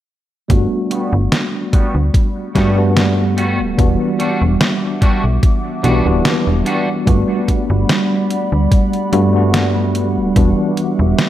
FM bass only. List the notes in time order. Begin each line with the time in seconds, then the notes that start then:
0.50 G1
1.13 G1
1.95 D2
2.55 G2
3.59 D1
3.79 E1
4.41 E1
5.24 B1
5.84 B1
6.06 D1
6.47 E1
7.07 G1
7.70 G1
8.52 D2
9.13 G2
10.17 D1
10.36 E1
10.99 E1